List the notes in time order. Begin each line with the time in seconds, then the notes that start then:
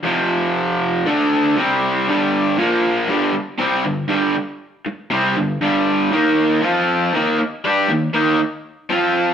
0.03 F2 C3 F3
1.06 D3 A3 D4
1.57 C3 G3 C4
2.08 G2 D3 G3
2.58 A#2 F3 A#3
3.08 G2 D3 G3
3.34 muted overdriven electric guitar stroke
3.58 C3 G3 C4
3.85 G2 D3
4.08 G2 D3 G3
4.86 muted overdriven electric guitar stroke
5.10 C3 G3 C4
5.37 G2 D3
5.61 G2 D3 G3
6.11 D#3 A#3 D#4
6.62 F3 C4 F4
7.14 D#3 A#3 D#4
7.39 muted overdriven electric guitar stroke
7.64 G3 D4 G4
7.88 D#3 A#3
8.14 D#3 A#3 D#4
8.89 F3 C4 F4